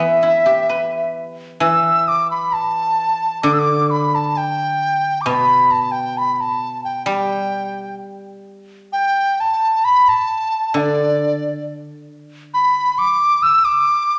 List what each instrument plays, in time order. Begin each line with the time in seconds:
Already playing: guzheng D3 E3, dizi E5
0.00 guzheng B3
0.23 guzheng E4
0.46 guzheng G4
0.69 guzheng B4
1.60 guzheng E3, dizi E6
2.08 dizi D6
2.31 dizi B5
2.53 dizi A5
3.43 guzheng D3, dizi D6
3.53 dizi E6
3.59 dizi D6
3.91 dizi B5
4.15 dizi A5
4.37 dizi G5
5.21 dizi D6
5.26 guzheng B2, dizi B5
5.71 dizi A5
5.92 dizi G5
6.18 dizi B5
6.34 dizi B5
6.41 dizi A5
6.84 dizi G5
7.06 guzheng G3, dizi G5
8.93 dizi G5
9.40 dizi A5
9.85 dizi B5
10.09 dizi A5
10.74 guzheng D3, dizi D5
12.54 dizi B5
12.98 dizi D6
13.43 dizi E6
13.65 dizi D6